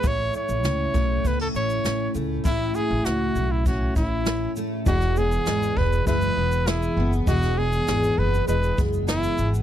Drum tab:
SH |x-xxx-x-x-xxx-x-|x-x-x-x-x-x-x-x-|xxxxxx-xxx-xxx-x|xx-xxx-xxxxxxxxx|
SD |----o-------o---|----o-------o---|-o--o-------o---|-o--o-------o---|
BD |o-----o-o-------|o-------o-o-----|o-----o-o-------|o---------o-----|